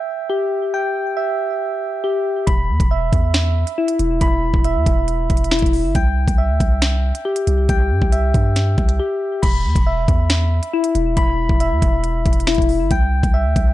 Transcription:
Already playing: E5 G5
0.30 G4
0.74 G5
1.17 E5
2.04 G4
2.47 E1 B5, kick, closed hi-hat
2.69 E2
2.80 E1, kick, closed hi-hat
2.91 E5
3.13 E2, kick, closed hi-hat
3.34 finger snap, snare, closed hi-hat
3.67 closed hi-hat
3.78 E4
3.88 closed hi-hat
3.99 E1, closed hi-hat
4.21 E1 B5, kick, closed hi-hat
4.54 E1, kick
4.64 E5, closed hi-hat
4.75 E2
4.86 E1, kick, closed hi-hat
5.08 closed hi-hat
5.30 E1, kick, closed hi-hat
5.37 closed hi-hat
5.44 closed hi-hat
5.51 E4, finger snap, snare, closed hi-hat
5.59 E1, kick, closed hi-hat
5.66 closed hi-hat
5.73 open hi-hat
5.84 G1
5.95 C2 G5, kick, closed hi-hat
6.28 C2, kick, closed hi-hat
6.38 E5
6.49 D2
6.60 C2, kick, closed hi-hat
6.82 finger snap, snare, closed hi-hat
7.15 closed hi-hat
7.25 G4
7.36 closed hi-hat
7.47 C2, closed hi-hat
7.69 C2 G5, kick, closed hi-hat
7.91 G2
8.02 C2, kick
8.12 E5, closed hi-hat
8.34 G2, kick, closed hi-hat
8.56 snare, closed hi-hat
8.78 C2, kick, closed hi-hat
8.89 closed hi-hat
8.99 G4
9.42 E1 B5, kick, closed hi-hat, crash
9.65 E2
9.76 E1, kick, closed hi-hat
9.87 E5
10.08 E2, kick, closed hi-hat
10.30 finger snap, snare, closed hi-hat
10.63 closed hi-hat
10.73 E4
10.84 closed hi-hat
10.95 E1, closed hi-hat
11.17 E1 B5, kick, closed hi-hat
11.49 E1, kick
11.60 E5, closed hi-hat
11.71 E2
11.82 E1, kick, closed hi-hat
12.04 closed hi-hat
12.26 E1, kick, closed hi-hat
12.33 closed hi-hat
12.40 closed hi-hat
12.47 E4, finger snap, snare, closed hi-hat
12.55 E1, kick, closed hi-hat
12.62 closed hi-hat
12.69 open hi-hat
12.80 G1
12.91 C2 G5, kick, closed hi-hat
13.23 C2, kick, closed hi-hat
13.34 E5
13.45 D2
13.56 C2, kick, closed hi-hat

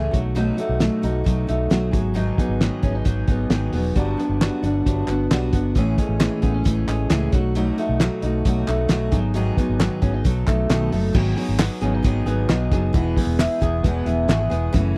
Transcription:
Already playing: A2 E3 A3 C#4 G#4
0.11 B1 F#3 A3 D#4 F#4, kick, closed hi-hat
0.35 B2 F#3 A3 D#4 F#4, closed hi-hat
0.57 A3 D#4 F#4, closed hi-hat
0.69 B1
0.80 B2 F#3 A3 D#4 F#4, snare, closed hi-hat
1.02 B1 A3 D#4 F#4, closed hi-hat
1.24 B1 F#3 A3 D#4 F#4, kick, closed hi-hat
1.47 B1 A3 D#4 F#4, closed hi-hat
1.70 B1 B2 F#3 A3 D#4 F#4, snare, closed hi-hat
1.91 G#1 F#3 B3 D#4 G#4, kick, closed hi-hat
2.14 G#2 D#3 F#3 B3 D#4 G#4, closed hi-hat
2.38 F#3 B3 D#4 G#4, kick, closed hi-hat
2.49 G#1
2.61 G#2 D#3 F#3 B3 D#4 G#4, snare, closed hi-hat
2.83 G#1 F#3 B3 C#4 D#4 G#4, kick, closed hi-hat
2.95 D#4
3.04 G#1 F#3 B3 D#4 G#4, kick, closed hi-hat
3.27 G#1 F#3 B3 D#4 G#4, kick, closed hi-hat
3.50 G#1 G#2 D#3 F#3 B3 D#4 G#4, snare, closed hi-hat
3.73 E1 F#3 B3 D#4 G#4, open hi-hat
3.95 G1 F#3 G3 B3 D4 F#4, kick, closed hi-hat
4.17 B3 D4 F#4, closed hi-hat
4.29 G1
4.41 F#3 G3 B3 D4 F#4, snare, clap, closed hi-hat
4.63 G1 B3 D4 F#4, closed hi-hat
4.86 G1 F#3 G3 B3 D4 F#4, kick, closed hi-hat
5.07 G1 B3 D4 F#4, clap, closed hi-hat
5.31 B1 F#3 G3 B3 D4 F#4, snare, clap, closed hi-hat
5.53 G1 B3 D4 F#4, kick, closed hi-hat
5.75 A1 A2 E3 A3 C#4 G#4, kick, closed hi-hat
5.98 G#3 A3 C#4 G#4, kick, closed hi-hat
6.09 A1
6.19 A2 E3 A3 C#4 G#4, snare, clap, closed hi-hat
6.42 A1 A3 B3 C#4 G#4, kick, closed hi-hat
6.54 C#4
6.64 A1 E3 A3 C#4 G#4, kick, closed hi-hat
6.88 A1 G#3 A3 C#4 G#4, clap, closed hi-hat
7.10 C#2 A2 E3 A3 C#4 G#4, snare, clap, closed hi-hat
7.32 B1 F#3 A3 D#4 F#4, kick, closed hi-hat
7.55 B2 F#3 A3 D#4 F#4, closed hi-hat
7.78 A3 D#4 F#4, closed hi-hat
7.89 B1
8.00 B2 F#3 A3 D#4 F#4, snare, clap, closed hi-hat
8.22 B1 A3 D#4 F#4, closed hi-hat
8.45 B1 F#3 A3 D#4 F#4, kick, closed hi-hat
8.67 B1 A3 D#4 F#4, clap, closed hi-hat
8.88 B1 B2 F#3 A3 D#4 F#4, snare, clap, closed hi-hat
9.11 G#1 F#3 B3 D#4 G#4, kick, closed hi-hat
9.34 G#2 D#3 F#3 B3 D#4 G#4, closed hi-hat
9.57 F#3 B3 D#4 G#4, kick, closed hi-hat
9.69 G#1
9.80 G#2 D#3 F#3 B3 D#4 G#4, snare, clap, closed hi-hat
10.02 G#1 F#3 B3 C#4 D#4 G#4, kick, closed hi-hat
10.14 D#4
10.24 B1 F#3 B3 D#4 A4, kick, closed hi-hat
10.47 B1 F#3 A3 B3 D#4 A4, kick, clap, closed hi-hat
10.69 B1 B2 D#3 F#3 B3 D#4 A4, snare, clap, closed hi-hat
10.92 F#1 F#3 A3 B3 D#4 A4, open hi-hat
11.14 G#1 G#2 D#3 F#3 B3 D#4 G#4, kick, crash
11.36 F#3 B3 D#4 G#4, hi-hat pedal, open hi-hat
11.49 G#1
11.58 F#3 B3 D#4 G#4, snare, clap, hi-hat pedal, open hi-hat
11.81 G#1 F#3 B3 C#4 D#4 G#4, hi-hat pedal, open hi-hat
11.94 D#4
12.03 G#1 G#2 D#3 F#3 B3 D#4 G#4, kick, hi-hat pedal, open hi-hat
12.26 G#1 F#3 B3 D#4 G#4, hi-hat pedal, open hi-hat
12.48 B1 F#3 B3 D#4 G#4, snare, clap, hi-hat pedal, open hi-hat
12.72 F#1 F#3 B3 D#4 G#4, kick, hi-hat pedal, open hi-hat
12.93 E1 E2 B2 E3 G#3 B3 G#4, kick, hi-hat pedal, open hi-hat
13.17 E3 G#3 B3 G#4, kick, hi-hat pedal, open hi-hat
13.27 E1
13.39 E3 G#3 B3 E4 G#4, snare, clap, hi-hat pedal, open hi-hat
13.61 E1 E3 G#3 B3 G#4, kick, hi-hat pedal, open hi-hat
13.84 E1 E2 B2 E3 G#3 B3 G#4, kick, hi-hat pedal, open hi-hat
14.06 E1 E3 G#3 B3 E4 G#4, hi-hat pedal, open hi-hat
14.28 G#1 E3 G#3 B3 F#4 G#4, snare, clap, hi-hat pedal, open hi-hat
14.39 G#4
14.50 E1 E3 G#3 B3 G#4, hi-hat pedal, open hi-hat
14.72 F#1 F#2 C#3 E3 A3 C#4 F#4, kick, hi-hat pedal, open hi-hat

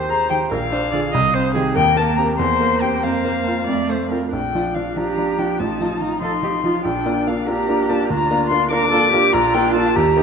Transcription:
Already playing: D#2 A#3 D#4 G4 C5
0.09 G#4 A#5
0.30 D#3 G4 G5
0.51 A#1 A#4 F5
0.71 D4 C5
0.91 D3 F4 G#4 D5
1.12 C2 D#5
1.34 C4 C5
1.54 D#3 D#4 G4 G#4
1.75 D#2 A#3 A#4 G5
1.97 A#3 A5
2.17 C4 G4 A#5
2.38 E2 A#3 C5 C6
2.61 A#3
2.82 C4 G4 G5
3.02 F2 A#3 C5 F5
3.25 A#3
3.47 C4 F4
3.67 F2 A3 D5
3.89 A3 C5
4.11 C4 F4 A#4
4.32 A#1 D4 G5
4.55 F3 D4 F4
4.75 F3 D4 F4 F5
4.96 F3 D4 F4 G4 A#5
5.18 F3 D4 F4
5.38 F3 D4 F4 G5
5.59 A1 D#4 F4 A5
5.80 F3 D#4 F4
6.01 F3 D#4 F4 A#5
6.21 F3 D#4 F4 A4 C6
6.43 F3 D#4 F4 G4
6.64 F3 D#4 F4
6.85 A#1 D4 G5
7.06 A#3 D4 F4
7.27 A#3 D4 F4 F5
7.47 A#3 D4 F4 G4 A#5
7.68 A#3 D4 F4
7.89 A#3 D4 F4 A5
8.09 D2 F4 A#5
8.31 A#3 D4 F4
8.50 A#3 D4 F4 C6
8.71 A#3 D4 F4 A#4 D6
8.91 A#3 D4 F4 A4
9.12 A#3 D4 F4 G4
9.33 A#1 D4 F4 A#5
9.54 A#3 D4 F4 G5
9.75 A#3 D4 F4 A5
9.95 D#2 G4 A#5
10.17 A#3 D#4 G4

